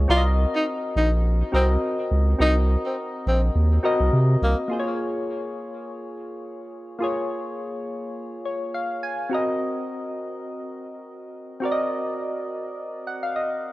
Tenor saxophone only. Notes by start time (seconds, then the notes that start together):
0.10 F4
0.55 D#4
0.97 D#4
1.55 C4
2.41 D#4
2.86 C4
3.28 C4
4.43 A#3